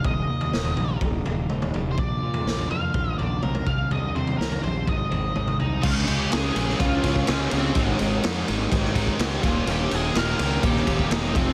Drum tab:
CC |----------------|----------------|----------------|x---------------|
RD |----------------|----------------|----------------|--x-x-x-x-x-x-x-|
SD |----o-----------|----o-----------|----o-----------|----o--o----o---|
T2 |------------oo--|------------oo--|------------oo--|----------------|
FT |o--o-oo-o-o--oo-|o--o-oo-o-o--oo-|o-oo-oo-o-o--oo-|----------------|
BD |o-------o-------|o-------o-----o-|--------o-------|o-------o-oo----|

CC |----------------|----------------|
RD |x-x-x-x-x-x-x-x-|x-x-x-x-x-x-x-x-|
SD |----o----o--o---|----o----o--oo--|
T2 |----------------|----------------|
FT |----------------|----------------|
BD |o-------o-oo--o-|--------o-oo--o-|